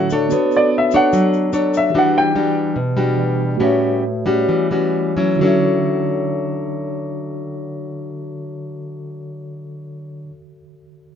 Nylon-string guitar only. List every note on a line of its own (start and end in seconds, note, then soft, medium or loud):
0.00 0.30 A2 medium
0.12 0.90 D4 medium
0.12 0.90 A4 medium
0.12 0.90 C#5 medium
0.32 1.11 B3 medium
0.94 1.51 D4 medium
0.94 1.51 A4 soft
0.94 1.51 C#5 medium
1.13 1.92 F#3 medium
1.53 1.91 D4 soft
1.53 1.91 A4 soft
1.53 1.91 C#5 medium
1.94 2.74 E3 medium
1.94 2.32 G3 soft
1.94 2.32 D4 medium
1.94 2.32 F#4 medium
2.35 2.76 G3 soft
2.35 2.76 D4 medium
2.35 2.76 F#4 medium
2.76 3.58 B2 medium
2.97 3.57 G3 medium
2.97 3.57 D4 medium
2.97 3.57 F#4 medium
3.60 4.45 A2 medium
3.60 4.03 G3 soft
3.60 4.03 C#4 soft
3.60 4.03 F#4 medium
4.26 4.67 G3 medium
4.26 4.67 C#4 medium
4.26 4.67 F#4 medium
4.49 5.38 E3 medium
4.71 5.13 G3 medium
4.71 5.14 C#4 medium
4.71 5.14 F#4 medium
5.17 5.40 F#3 medium
5.17 5.42 C#4 medium
5.17 5.44 E4 medium
5.39 10.30 D3 medium
5.39 10.32 F#3 medium
5.43 10.34 C#4 medium
5.43 10.37 E4 medium